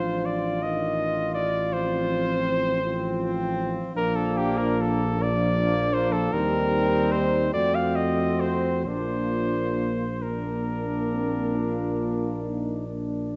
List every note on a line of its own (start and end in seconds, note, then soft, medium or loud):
0.00 3.79 A1 medium
0.00 0.61 F3 medium
0.00 1.55 D4 medium
0.00 2.67 F4 medium
0.00 0.27 C5 loud
0.25 0.64 D5 medium
0.62 1.45 D#3 medium
0.62 1.34 D#5 loud
1.35 1.74 D5 loud
1.71 2.80 F3 medium
1.71 2.82 C4 medium
1.71 3.59 C5 loud
2.83 3.94 F3 medium
2.83 3.94 C4 loud
2.83 3.96 F4 medium
3.94 6.29 A#1 loud
3.94 5.17 F3 loud
3.94 5.18 A#3 loud
3.94 5.17 D4 loud
3.94 4.17 A#4 loud
4.16 4.39 A4 loud
4.37 4.59 G4 loud
4.58 4.82 A#4 loud
4.81 5.24 A4 loud
5.20 6.35 F3 loud
5.20 6.31 A#3 medium
5.20 6.31 D4 medium
5.20 5.95 D5 loud
5.94 6.14 C5 loud
6.12 6.35 A4 loud
6.32 7.52 D#2 medium
6.32 7.55 G3 loud
6.32 7.52 C4 medium
6.32 6.89 D#4 loud
6.32 7.13 A#4 loud
6.90 7.52 D#4 medium
7.12 7.53 C5 loud
7.53 8.87 F2 loud
7.53 8.86 A3 medium
7.53 8.83 C4 medium
7.53 8.85 F#4 medium
7.53 7.76 D5 loud
7.75 7.97 F5 loud
7.95 8.42 D#5 loud
8.40 8.85 C5 loud
8.85 13.36 A#1 medium
8.85 10.06 A#3 medium
8.85 10.05 D4 medium
8.85 10.05 F4 medium
8.85 10.24 C5 loud
10.22 13.36 A#3 medium
10.22 11.09 D4 medium
10.22 13.36 D4 medium
10.22 12.87 A#4 medium
11.13 11.57 C4 medium
11.56 12.43 F4 medium
12.42 12.86 D#4 medium
12.87 13.36 D4 medium